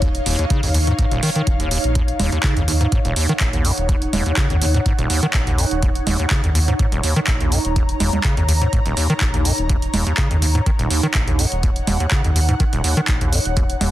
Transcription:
Already playing: analog synth bass D#1, ambient pad D#4 C#5 F5
0.02 acid bass D#2, kick, closed hi-hat
0.15 closed hi-hat
0.26 analog synth bass D#1, acid bass D#2, open hi-hat
0.39 acid bass D#2, closed hi-hat
0.50 acid bass C#3, kick, closed hi-hat
0.63 analog synth bass D#2, acid bass F2, open hi-hat
0.74 acid bass D#2, open hi-hat
0.87 acid bass G#2, closed hi-hat
0.99 acid bass G#2, kick, closed hi-hat
1.12 analog synth bass D#1, acid bass D#1, closed hi-hat
1.23 acid bass D#3, open hi-hat
1.36 acid bass D#3, closed hi-hat
1.47 analog synth bass D#1, kick, closed hi-hat
1.60 acid bass D#2, closed hi-hat
1.71 acid bass D#2, open hi-hat
1.84 analog synth bass A#1, closed hi-hat
1.95 acid bass D#2, kick, closed hi-hat
2.08 closed hi-hat
2.20 analog synth bass D#1, acid bass D#2, open hi-hat, low conga
2.32 acid bass D#2, closed hi-hat
2.43 acid bass C#3, kick, clap, closed hi-hat
2.47 ambient pad F#5
2.57 analog synth bass D#2, acid bass F2, closed hi-hat
2.68 acid bass D#2, open hi-hat
2.81 acid bass G#2, closed hi-hat
2.92 acid bass G#2, kick, closed hi-hat
3.05 analog synth bass D#1, acid bass D#1, closed hi-hat
3.16 acid bass D#2, open hi-hat
3.29 acid bass D#3, closed hi-hat
3.40 analog synth bass A#1, kick, clap, closed hi-hat
3.53 acid bass D#2, closed hi-hat
3.65 acid bass F#2, open hi-hat
3.78 analog synth bass D#1, closed hi-hat
3.89 acid bass D#2, kick, closed hi-hat
4.02 closed hi-hat
4.13 analog synth bass D#1, acid bass D#2, open hi-hat, low conga
4.26 acid bass D#2, closed hi-hat
4.37 acid bass C#3, kick, clap, closed hi-hat
4.50 analog synth bass D#2, acid bass F2, closed hi-hat
4.62 acid bass D#2, open hi-hat
4.74 acid bass G#2, closed hi-hat
4.86 acid bass G#2, kick, closed hi-hat
4.99 analog synth bass D#1, acid bass D#1, closed hi-hat
5.10 acid bass D#2, open hi-hat
5.23 acid bass D#3, closed hi-hat
5.34 analog synth bass A#1, kick, clap, closed hi-hat
5.47 acid bass D#2, closed hi-hat
5.58 acid bass F#2, open hi-hat
5.71 analog synth bass D#1, closed hi-hat
5.83 acid bass D#2, kick, closed hi-hat
5.95 closed hi-hat
6.07 analog synth bass D#1, acid bass D#2, open hi-hat, low conga
6.20 acid bass D#2, closed hi-hat
6.30 acid bass C#3, ambient pad A#5, kick, clap, closed hi-hat
6.44 analog synth bass D#2, acid bass F2, closed hi-hat
6.55 acid bass D#2, open hi-hat
6.68 acid bass G#2, closed hi-hat
6.79 acid bass G#2, kick, closed hi-hat
6.92 analog synth bass D#1, acid bass D#1, closed hi-hat
7.04 acid bass D#2, open hi-hat
7.16 acid bass D#3, closed hi-hat
7.27 analog synth bass A#1, kick, clap, closed hi-hat
7.41 acid bass D#2, closed hi-hat
7.52 acid bass F#2, open hi-hat
7.65 analog synth bass D#1, closed hi-hat
7.76 acid bass D#2, kick, closed hi-hat
7.89 closed hi-hat
8.00 analog synth bass D#1, acid bass D#2, open hi-hat, low conga
8.13 acid bass D#2, closed hi-hat, low conga
8.24 acid bass C#3, kick, clap, closed hi-hat
8.37 analog synth bass D#2, acid bass F2, closed hi-hat
8.49 acid bass D#2, open hi-hat
8.61 acid bass G#2, closed hi-hat
8.73 acid bass G#2, kick, closed hi-hat
8.86 analog synth bass D#1, acid bass D#1, closed hi-hat
8.97 acid bass D#2, open hi-hat
9.10 acid bass D#3, closed hi-hat
9.21 analog synth bass A#1, kick, clap, closed hi-hat
9.34 acid bass D#2, closed hi-hat
9.45 acid bass F#2, open hi-hat
9.58 analog synth bass D#1, closed hi-hat
9.69 acid bass D#2, kick, closed hi-hat
9.82 closed hi-hat
9.94 analog synth bass D#1, acid bass D#2, open hi-hat, low conga
10.07 acid bass D#2, closed hi-hat
10.18 acid bass C#3, kick, clap, closed hi-hat
10.22 ambient pad F#5
10.31 analog synth bass D#2, acid bass F2, closed hi-hat
10.42 acid bass D#2, open hi-hat
10.55 acid bass G#2, closed hi-hat
10.66 acid bass D#3, kick, closed hi-hat
10.79 acid bass D#1, analog synth bass D#1, closed hi-hat
10.90 acid bass D#2, open hi-hat
11.03 acid bass D#3, closed hi-hat
11.14 analog synth bass A#1, kick, clap, closed hi-hat
11.27 acid bass D#2, closed hi-hat
11.39 acid bass F#2, open hi-hat
11.52 analog synth bass D#1, closed hi-hat
11.63 acid bass D#2, kick, closed hi-hat
11.76 closed hi-hat
11.87 analog synth bass D#1, acid bass D#2, open hi-hat, low conga
12.00 acid bass D#2, closed hi-hat
12.11 acid bass C#3, kick, clap, closed hi-hat
12.24 analog synth bass D#2, acid bass F2, closed hi-hat
12.36 acid bass D#2, open hi-hat
12.49 acid bass G#2, closed hi-hat
12.60 acid bass D#3, kick, closed hi-hat
12.73 acid bass D#1, analog synth bass D#1, closed hi-hat
12.84 acid bass D#2, open hi-hat
12.97 acid bass D#3, closed hi-hat
13.08 analog synth bass A#1, kick, clap, closed hi-hat
13.21 acid bass D#2, closed hi-hat
13.33 acid bass F#2, open hi-hat
13.45 analog synth bass D#1, closed hi-hat
13.57 acid bass D#2, kick, closed hi-hat
13.70 closed hi-hat
13.81 analog synth bass D#1, acid bass D#2, open hi-hat, low conga

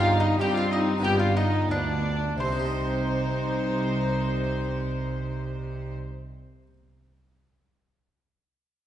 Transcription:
Already playing: double bass section G1, harpsichord G2 C4 D#4, cello section G2, viola section D#4, violin section F4 F5
0.00 mandolin F4
0.18 violin section D#4 D#5, mandolin D#4
0.39 double bass section G2, cello section G3, harpsichord G3, viola section C4, violin section G4 G5, mandolin G4
0.53 violin section F4 F5
0.57 mandolin F4
0.70 violin section D#4 D#5, mandolin D#4
0.98 harpsichord B3 D4 F4
1.02 double bass section G1, cello section G2, harpsichord G2, viola section B3, violin section G4 G5, mandolin G4
1.19 mandolin F4, violin section F4 F5
1.34 violin section D#4 D#5, mandolin D#4
1.68 cello section D2, harpsichord D2, double bass section D2, viola section B3, violin section D4 D5, mandolin D4
2.37 double bass section C2, harpsichord C3, cello section C3, viola section D#4, violin section C5, mandolin C5
2.45 harpsichord C4
2.52 harpsichord D#4
2.59 harpsichord G4
2.66 harpsichord D#5

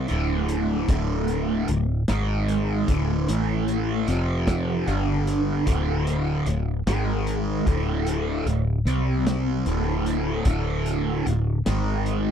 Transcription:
0.08 fingered electric bass D1, distorted electric guitar D2 A2 D3, closed hi-hat
0.48 closed hi-hat
0.88 fingered electric bass D1, distorted electric guitar D2 A2 D3, kick, closed hi-hat
1.28 closed hi-hat
1.68 fingered electric bass D1, distorted electric guitar D2 A2, closed hi-hat
2.08 fingered electric bass G#1, distorted electric guitar G#2 D#3 G#3, snare, closed hi-hat
2.48 closed hi-hat
2.88 fingered electric bass D1, distorted electric guitar D2 A2 D3, kick, closed hi-hat
3.28 fingered electric bass A1, distorted electric guitar A2 E3 A3, closed hi-hat
3.68 closed hi-hat
4.08 fingered electric bass F1, distorted electric guitar F2 C3 F3, closed hi-hat
4.47 kick, snare, closed hi-hat
4.88 fingered electric bass G1, distorted electric guitar G2 D3 G3, closed hi-hat
5.27 closed hi-hat
5.67 fingered electric bass D1, distorted electric guitar D2 A2 D3, kick, closed hi-hat
6.07 closed hi-hat
6.46 fingered electric bass D1, distorted electric guitar D2 A2, closed hi-hat
6.87 fingered electric bass G#1, distorted electric guitar G#2 D#3 G#3, snare, closed hi-hat
7.27 closed hi-hat
7.66 fingered electric bass D1, distorted electric guitar D2 A2 D3, kick, closed hi-hat
8.07 closed hi-hat
8.46 fingered electric bass D1, distorted electric guitar D2 A2, closed hi-hat
8.85 fingered electric bass C2, distorted electric guitar C3 G3 C4, closed hi-hat
9.27 snare, closed hi-hat
9.66 fingered electric bass D1, distorted electric guitar D2 A2 D3, closed hi-hat
10.06 closed hi-hat
10.45 fingered electric bass D1, distorted electric guitar D2 A2 D3, kick, closed hi-hat
10.86 closed hi-hat
11.26 fingered electric bass D1, distorted electric guitar D2 A2, closed hi-hat
11.66 fingered electric bass G#1, distorted electric guitar G#2 D#3 G#3, snare, closed hi-hat
12.06 closed hi-hat

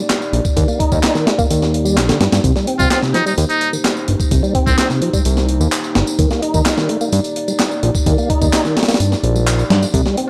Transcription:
Already playing: analog synth pad A#3 D#4 G4 D5
0.10 snare, clap, closed hi-hat, tambourine
0.22 tambourine
0.33 analog synth bass A#1, closed hi-hat
0.45 kick, tambourine
0.56 analog synth bass D#2, tonewheel organ D#3, kick, closed hi-hat, tambourine
0.68 tonewheel organ A#3, tambourine
0.79 tonewheel organ D#4, kick, closed hi-hat
0.92 analog synth bass D#2, kick, tambourine
1.03 snare, clap, closed hi-hat, tambourine
1.15 tonewheel organ D#3, snare, tambourine
1.26 tonewheel organ A3, snare, closed hi-hat
1.38 tonewheel organ A#3, kick, tambourine
1.50 analog synth bass D#2, closed hi-hat, tambourine
1.62 snare, tambourine
1.74 closed hi-hat
1.85 tonewheel organ G3, tambourine
1.97 analog synth bass A#1, snare, clap, closed hi-hat, tambourine
2.08 tonewheel organ D3, snare, closed hi-hat, tambourine
2.20 analog synth bass G2, snare, closed hi-hat
2.32 analog synth bass G2, snare, closed hi-hat, tambourine
2.44 analog synth bass C2, tonewheel organ C3, analog synth pad C5, kick, closed hi-hat, tambourine
2.56 tonewheel organ G3, snare, tambourine
2.67 tonewheel organ C4, closed hi-hat
2.79 analog synth bass C2, muted trumpet F4, kick, tambourine
2.91 muted trumpet F4, snare, clap, closed hi-hat, tambourine
3.02 tonewheel organ C3, snare, tambourine
3.14 tonewheel organ F3, muted trumpet D#4, snare, closed hi-hat
3.26 tonewheel organ G3, muted trumpet D#4, tambourine
3.38 analog synth bass D#2, closed hi-hat, tambourine
3.50 muted trumpet D#4, closed hi-hat, tambourine
3.61 closed hi-hat
3.73 tonewheel organ D#3, tambourine
3.84 snare, clap, closed hi-hat, tambourine
3.97 tambourine
4.08 analog synth bass G1, closed hi-hat
4.20 kick, tambourine
4.31 analog synth bass C2, tonewheel organ C3, kick, closed hi-hat, tambourine
4.43 tonewheel organ G3, tambourine
4.55 tonewheel organ C4, kick, closed hi-hat
4.67 analog synth bass C2, muted trumpet C4, kick, tambourine
4.78 muted trumpet C4, snare, clap, closed hi-hat, tambourine
4.90 tonewheel organ C3, snare, tambourine
5.02 tonewheel organ F3, closed hi-hat
5.13 tonewheel organ G3, kick, tambourine
5.25 analog synth bass C2, closed hi-hat, tambourine
5.37 snare, tambourine
5.49 closed hi-hat
5.60 analog synth bass D#2, tonewheel organ D#3, tambourine
5.72 clap, closed hi-hat, tambourine
5.84 tambourine
5.95 analog synth bass G1, snare, closed hi-hat
6.07 tambourine
6.19 analog synth bass D#2, tonewheel organ D#3, analog synth pad D5, kick, closed hi-hat, tambourine
6.30 tonewheel organ A#3, snare, tambourine
6.42 tonewheel organ D#4, closed hi-hat
6.54 analog synth bass D#2, kick, tambourine
6.66 snare, clap, closed hi-hat, tambourine
6.77 tonewheel organ D#3, snare, tambourine
6.89 tonewheel organ A3, closed hi-hat
7.01 tonewheel organ A#3, tambourine
7.12 analog synth bass G2, closed hi-hat, tambourine
7.24 closed hi-hat, tambourine
7.36 closed hi-hat
7.48 tonewheel organ G3, tambourine
7.60 snare, clap, closed hi-hat, tambourine
7.71 tambourine
7.83 analog synth bass A#1, closed hi-hat
7.95 kick, tambourine
8.06 analog synth bass D#2, tonewheel organ D#3, kick, closed hi-hat, tambourine
8.18 tonewheel organ A#3, tambourine
8.30 tonewheel organ D#4, kick, closed hi-hat
8.42 analog synth bass D#2, kick, tambourine
8.53 snare, clap, closed hi-hat, tambourine
8.65 tonewheel organ D#3, snare, tambourine
8.77 tonewheel organ A3, snare, closed hi-hat
8.83 snare, closed hi-hat
8.88 tonewheel organ A#3, snare, closed hi-hat, tambourine
8.94 snare, closed hi-hat
9.00 analog synth bass G2, closed hi-hat, tambourine
9.12 snare, tambourine
9.23 analog synth bass A#1, closed hi-hat
9.35 tonewheel organ G3, tambourine
9.47 clap, closed hi-hat, tambourine
9.59 tambourine
9.70 analog synth bass G2, snare, closed hi-hat
9.82 tambourine
9.94 analog synth bass C2, tonewheel organ C3, analog synth pad A#3 D#4 G4 C5, kick, closed hi-hat, tambourine
10.06 tonewheel organ G3, snare, tambourine
10.17 tonewheel organ C4, closed hi-hat

